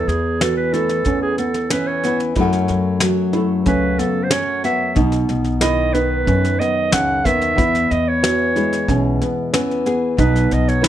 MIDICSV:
0, 0, Header, 1, 6, 480
1, 0, Start_track
1, 0, Key_signature, 4, "major"
1, 0, Tempo, 651466
1, 1742, Time_signature, 4, 2, 24, 8
1, 8016, End_track
2, 0, Start_track
2, 0, Title_t, "Clarinet"
2, 0, Program_c, 0, 71
2, 57, Note_on_c, 0, 68, 69
2, 306, Note_on_c, 0, 69, 70
2, 317, Note_off_c, 0, 68, 0
2, 415, Note_off_c, 0, 69, 0
2, 420, Note_on_c, 0, 71, 76
2, 541, Note_on_c, 0, 69, 90
2, 552, Note_off_c, 0, 71, 0
2, 895, Note_off_c, 0, 69, 0
2, 900, Note_on_c, 0, 68, 81
2, 1013, Note_off_c, 0, 68, 0
2, 1018, Note_on_c, 0, 69, 68
2, 1259, Note_on_c, 0, 71, 76
2, 1270, Note_off_c, 0, 69, 0
2, 1379, Note_on_c, 0, 73, 75
2, 1390, Note_off_c, 0, 71, 0
2, 1621, Note_off_c, 0, 73, 0
2, 2706, Note_on_c, 0, 71, 80
2, 2938, Note_on_c, 0, 69, 78
2, 2949, Note_off_c, 0, 71, 0
2, 3119, Note_on_c, 0, 72, 68
2, 3130, Note_off_c, 0, 69, 0
2, 3180, Note_on_c, 0, 73, 83
2, 3191, Note_off_c, 0, 72, 0
2, 3419, Note_off_c, 0, 73, 0
2, 3423, Note_on_c, 0, 76, 71
2, 3646, Note_off_c, 0, 76, 0
2, 4137, Note_on_c, 0, 75, 83
2, 4372, Note_on_c, 0, 71, 86
2, 4384, Note_off_c, 0, 75, 0
2, 4857, Note_on_c, 0, 75, 85
2, 4868, Note_off_c, 0, 71, 0
2, 5100, Note_off_c, 0, 75, 0
2, 5103, Note_on_c, 0, 78, 93
2, 5345, Note_on_c, 0, 76, 93
2, 5356, Note_off_c, 0, 78, 0
2, 5830, Note_on_c, 0, 75, 75
2, 5841, Note_off_c, 0, 76, 0
2, 5955, Note_on_c, 0, 73, 82
2, 5966, Note_off_c, 0, 75, 0
2, 6670, Note_off_c, 0, 73, 0
2, 7510, Note_on_c, 0, 71, 75
2, 7760, Note_on_c, 0, 75, 67
2, 7771, Note_off_c, 0, 71, 0
2, 7872, Note_on_c, 0, 73, 77
2, 7883, Note_off_c, 0, 75, 0
2, 7991, Note_on_c, 0, 71, 77
2, 8002, Note_off_c, 0, 73, 0
2, 8016, Note_off_c, 0, 71, 0
2, 8016, End_track
3, 0, Start_track
3, 0, Title_t, "Felt piano"
3, 0, Program_c, 1, 0
3, 0, Note_on_c, 1, 64, 62
3, 290, Note_off_c, 1, 64, 0
3, 300, Note_on_c, 1, 66, 71
3, 537, Note_off_c, 1, 66, 0
3, 538, Note_on_c, 1, 64, 64
3, 775, Note_off_c, 1, 64, 0
3, 783, Note_on_c, 1, 61, 73
3, 1018, Note_off_c, 1, 61, 0
3, 1025, Note_on_c, 1, 59, 62
3, 1258, Note_on_c, 1, 61, 70
3, 1259, Note_off_c, 1, 59, 0
3, 1495, Note_off_c, 1, 61, 0
3, 1505, Note_on_c, 1, 59, 73
3, 1738, Note_off_c, 1, 59, 0
3, 1741, Note_on_c, 1, 64, 75
3, 2212, Note_off_c, 1, 64, 0
3, 2226, Note_on_c, 1, 66, 69
3, 2455, Note_on_c, 1, 64, 75
3, 2459, Note_off_c, 1, 66, 0
3, 2693, Note_off_c, 1, 64, 0
3, 2697, Note_on_c, 1, 61, 81
3, 2935, Note_off_c, 1, 61, 0
3, 2939, Note_on_c, 1, 59, 65
3, 3168, Note_on_c, 1, 61, 75
3, 3175, Note_off_c, 1, 59, 0
3, 3410, Note_off_c, 1, 61, 0
3, 3418, Note_on_c, 1, 59, 63
3, 3655, Note_off_c, 1, 59, 0
3, 3658, Note_on_c, 1, 63, 75
3, 4131, Note_off_c, 1, 63, 0
3, 4139, Note_on_c, 1, 64, 80
3, 4376, Note_off_c, 1, 64, 0
3, 4381, Note_on_c, 1, 63, 61
3, 4617, Note_off_c, 1, 63, 0
3, 4620, Note_on_c, 1, 61, 74
3, 4857, Note_off_c, 1, 61, 0
3, 4863, Note_on_c, 1, 59, 66
3, 5098, Note_off_c, 1, 59, 0
3, 5098, Note_on_c, 1, 61, 64
3, 5336, Note_off_c, 1, 61, 0
3, 5344, Note_on_c, 1, 59, 70
3, 5579, Note_off_c, 1, 59, 0
3, 5582, Note_on_c, 1, 64, 74
3, 6054, Note_off_c, 1, 64, 0
3, 6066, Note_on_c, 1, 66, 69
3, 6300, Note_off_c, 1, 66, 0
3, 6306, Note_on_c, 1, 64, 66
3, 6541, Note_off_c, 1, 64, 0
3, 6548, Note_on_c, 1, 61, 84
3, 6782, Note_off_c, 1, 61, 0
3, 6790, Note_on_c, 1, 59, 73
3, 7022, Note_on_c, 1, 61, 71
3, 7023, Note_off_c, 1, 59, 0
3, 7259, Note_off_c, 1, 61, 0
3, 7264, Note_on_c, 1, 59, 69
3, 7501, Note_off_c, 1, 59, 0
3, 7506, Note_on_c, 1, 63, 77
3, 7978, Note_off_c, 1, 63, 0
3, 7979, Note_on_c, 1, 64, 83
3, 8016, Note_off_c, 1, 64, 0
3, 8016, End_track
4, 0, Start_track
4, 0, Title_t, "Nylon-string guitar"
4, 0, Program_c, 2, 24
4, 0, Note_on_c, 2, 40, 68
4, 302, Note_on_c, 2, 52, 55
4, 543, Note_on_c, 2, 57, 46
4, 771, Note_off_c, 2, 40, 0
4, 780, Note_on_c, 2, 40, 58
4, 1260, Note_off_c, 2, 52, 0
4, 1269, Note_on_c, 2, 52, 65
4, 1275, Note_on_c, 2, 61, 54
4, 1521, Note_on_c, 2, 64, 59
4, 1713, Note_off_c, 2, 57, 0
4, 1716, Note_off_c, 2, 52, 0
4, 1720, Note_off_c, 2, 61, 0
4, 1740, Note_off_c, 2, 40, 0
4, 1752, Note_off_c, 2, 64, 0
4, 1754, Note_on_c, 2, 42, 73
4, 1757, Note_on_c, 2, 54, 49
4, 1762, Note_on_c, 2, 57, 59
4, 1766, Note_on_c, 2, 61, 52
4, 1772, Note_on_c, 2, 66, 61
4, 2218, Note_off_c, 2, 54, 0
4, 2221, Note_on_c, 2, 54, 56
4, 2467, Note_off_c, 2, 57, 0
4, 2476, Note_on_c, 2, 57, 52
4, 2702, Note_on_c, 2, 49, 60
4, 3172, Note_off_c, 2, 54, 0
4, 3179, Note_off_c, 2, 61, 0
4, 3181, Note_on_c, 2, 54, 63
4, 3182, Note_off_c, 2, 49, 0
4, 3188, Note_on_c, 2, 61, 62
4, 3415, Note_off_c, 2, 66, 0
4, 3424, Note_on_c, 2, 66, 55
4, 3633, Note_off_c, 2, 54, 0
4, 3634, Note_off_c, 2, 66, 0
4, 3636, Note_off_c, 2, 61, 0
4, 3639, Note_off_c, 2, 42, 0
4, 3640, Note_off_c, 2, 57, 0
4, 3647, Note_on_c, 2, 47, 69
4, 4130, Note_on_c, 2, 51, 54
4, 4135, Note_off_c, 2, 47, 0
4, 4379, Note_on_c, 2, 59, 46
4, 4607, Note_on_c, 2, 42, 49
4, 5094, Note_on_c, 2, 49, 55
4, 5328, Note_off_c, 2, 51, 0
4, 5337, Note_on_c, 2, 51, 55
4, 5339, Note_off_c, 2, 49, 0
4, 5547, Note_off_c, 2, 42, 0
4, 5566, Note_on_c, 2, 40, 69
4, 5581, Note_off_c, 2, 51, 0
4, 6060, Note_on_c, 2, 52, 57
4, 6308, Note_off_c, 2, 59, 0
4, 6311, Note_on_c, 2, 56, 51
4, 6543, Note_on_c, 2, 47, 54
4, 7018, Note_off_c, 2, 52, 0
4, 7025, Note_off_c, 2, 47, 0
4, 7027, Note_on_c, 2, 52, 64
4, 7033, Note_on_c, 2, 59, 56
4, 7265, Note_on_c, 2, 68, 58
4, 7477, Note_off_c, 2, 68, 0
4, 7479, Note_off_c, 2, 52, 0
4, 7481, Note_off_c, 2, 56, 0
4, 7494, Note_on_c, 2, 47, 68
4, 7498, Note_off_c, 2, 40, 0
4, 7967, Note_on_c, 2, 51, 61
4, 7981, Note_off_c, 2, 47, 0
4, 8016, Note_off_c, 2, 51, 0
4, 8016, Note_off_c, 2, 59, 0
4, 8016, End_track
5, 0, Start_track
5, 0, Title_t, "Upright bass"
5, 0, Program_c, 3, 32
5, 57, Note_on_c, 3, 40, 78
5, 750, Note_off_c, 3, 40, 0
5, 780, Note_on_c, 3, 40, 71
5, 1009, Note_off_c, 3, 40, 0
5, 1744, Note_on_c, 3, 42, 89
5, 1971, Note_off_c, 3, 42, 0
5, 1988, Note_on_c, 3, 42, 69
5, 2675, Note_off_c, 3, 42, 0
5, 2701, Note_on_c, 3, 37, 78
5, 2929, Note_off_c, 3, 37, 0
5, 3659, Note_on_c, 3, 35, 96
5, 3888, Note_off_c, 3, 35, 0
5, 3905, Note_on_c, 3, 35, 79
5, 4595, Note_off_c, 3, 35, 0
5, 4625, Note_on_c, 3, 42, 78
5, 4852, Note_off_c, 3, 42, 0
5, 5102, Note_on_c, 3, 37, 73
5, 5319, Note_off_c, 3, 37, 0
5, 5346, Note_on_c, 3, 39, 72
5, 5561, Note_off_c, 3, 39, 0
5, 5589, Note_on_c, 3, 40, 97
5, 5814, Note_off_c, 3, 40, 0
5, 5829, Note_on_c, 3, 40, 70
5, 6518, Note_off_c, 3, 40, 0
5, 6548, Note_on_c, 3, 35, 84
5, 6775, Note_off_c, 3, 35, 0
5, 7506, Note_on_c, 3, 35, 112
5, 7735, Note_off_c, 3, 35, 0
5, 7753, Note_on_c, 3, 35, 80
5, 8016, Note_off_c, 3, 35, 0
5, 8016, End_track
6, 0, Start_track
6, 0, Title_t, "Drums"
6, 65, Note_on_c, 9, 38, 26
6, 138, Note_off_c, 9, 38, 0
6, 303, Note_on_c, 9, 38, 75
6, 376, Note_off_c, 9, 38, 0
6, 542, Note_on_c, 9, 38, 27
6, 616, Note_off_c, 9, 38, 0
6, 657, Note_on_c, 9, 38, 27
6, 731, Note_off_c, 9, 38, 0
6, 770, Note_on_c, 9, 38, 22
6, 780, Note_on_c, 9, 36, 65
6, 843, Note_off_c, 9, 38, 0
6, 854, Note_off_c, 9, 36, 0
6, 1017, Note_on_c, 9, 38, 25
6, 1091, Note_off_c, 9, 38, 0
6, 1136, Note_on_c, 9, 38, 26
6, 1210, Note_off_c, 9, 38, 0
6, 1256, Note_on_c, 9, 38, 81
6, 1329, Note_off_c, 9, 38, 0
6, 1500, Note_on_c, 9, 38, 29
6, 1573, Note_off_c, 9, 38, 0
6, 1620, Note_on_c, 9, 38, 22
6, 1693, Note_off_c, 9, 38, 0
6, 1734, Note_on_c, 9, 38, 27
6, 1742, Note_on_c, 9, 36, 78
6, 1808, Note_off_c, 9, 38, 0
6, 1815, Note_off_c, 9, 36, 0
6, 1861, Note_on_c, 9, 38, 25
6, 1934, Note_off_c, 9, 38, 0
6, 1976, Note_on_c, 9, 38, 27
6, 2049, Note_off_c, 9, 38, 0
6, 2213, Note_on_c, 9, 38, 84
6, 2287, Note_off_c, 9, 38, 0
6, 2453, Note_on_c, 9, 38, 25
6, 2527, Note_off_c, 9, 38, 0
6, 2695, Note_on_c, 9, 38, 25
6, 2699, Note_on_c, 9, 36, 66
6, 2768, Note_off_c, 9, 38, 0
6, 2773, Note_off_c, 9, 36, 0
6, 2941, Note_on_c, 9, 38, 26
6, 3015, Note_off_c, 9, 38, 0
6, 3173, Note_on_c, 9, 38, 88
6, 3246, Note_off_c, 9, 38, 0
6, 3418, Note_on_c, 9, 38, 27
6, 3492, Note_off_c, 9, 38, 0
6, 3652, Note_on_c, 9, 38, 30
6, 3658, Note_on_c, 9, 36, 82
6, 3726, Note_off_c, 9, 38, 0
6, 3732, Note_off_c, 9, 36, 0
6, 3772, Note_on_c, 9, 38, 26
6, 3846, Note_off_c, 9, 38, 0
6, 3896, Note_on_c, 9, 38, 29
6, 3970, Note_off_c, 9, 38, 0
6, 4011, Note_on_c, 9, 38, 24
6, 4085, Note_off_c, 9, 38, 0
6, 4133, Note_on_c, 9, 38, 84
6, 4207, Note_off_c, 9, 38, 0
6, 4380, Note_on_c, 9, 38, 27
6, 4454, Note_off_c, 9, 38, 0
6, 4623, Note_on_c, 9, 36, 63
6, 4624, Note_on_c, 9, 38, 26
6, 4696, Note_off_c, 9, 36, 0
6, 4698, Note_off_c, 9, 38, 0
6, 4749, Note_on_c, 9, 38, 27
6, 4823, Note_off_c, 9, 38, 0
6, 4873, Note_on_c, 9, 38, 26
6, 4946, Note_off_c, 9, 38, 0
6, 5101, Note_on_c, 9, 38, 97
6, 5175, Note_off_c, 9, 38, 0
6, 5345, Note_on_c, 9, 36, 61
6, 5346, Note_on_c, 9, 38, 28
6, 5418, Note_off_c, 9, 36, 0
6, 5419, Note_off_c, 9, 38, 0
6, 5463, Note_on_c, 9, 38, 25
6, 5537, Note_off_c, 9, 38, 0
6, 5587, Note_on_c, 9, 36, 81
6, 5590, Note_on_c, 9, 38, 26
6, 5660, Note_off_c, 9, 36, 0
6, 5664, Note_off_c, 9, 38, 0
6, 5709, Note_on_c, 9, 38, 27
6, 5783, Note_off_c, 9, 38, 0
6, 5830, Note_on_c, 9, 38, 28
6, 5903, Note_off_c, 9, 38, 0
6, 6069, Note_on_c, 9, 38, 71
6, 6142, Note_off_c, 9, 38, 0
6, 6307, Note_on_c, 9, 38, 25
6, 6380, Note_off_c, 9, 38, 0
6, 6430, Note_on_c, 9, 38, 28
6, 6504, Note_off_c, 9, 38, 0
6, 6546, Note_on_c, 9, 36, 63
6, 6549, Note_on_c, 9, 38, 29
6, 6620, Note_off_c, 9, 36, 0
6, 6623, Note_off_c, 9, 38, 0
6, 6789, Note_on_c, 9, 38, 26
6, 6863, Note_off_c, 9, 38, 0
6, 7026, Note_on_c, 9, 38, 88
6, 7100, Note_off_c, 9, 38, 0
6, 7156, Note_on_c, 9, 38, 22
6, 7229, Note_off_c, 9, 38, 0
6, 7266, Note_on_c, 9, 38, 26
6, 7339, Note_off_c, 9, 38, 0
6, 7504, Note_on_c, 9, 36, 78
6, 7505, Note_on_c, 9, 38, 29
6, 7578, Note_off_c, 9, 36, 0
6, 7579, Note_off_c, 9, 38, 0
6, 7631, Note_on_c, 9, 38, 25
6, 7705, Note_off_c, 9, 38, 0
6, 7745, Note_on_c, 9, 38, 26
6, 7819, Note_off_c, 9, 38, 0
6, 7873, Note_on_c, 9, 38, 25
6, 7946, Note_off_c, 9, 38, 0
6, 7986, Note_on_c, 9, 38, 85
6, 8016, Note_off_c, 9, 38, 0
6, 8016, End_track
0, 0, End_of_file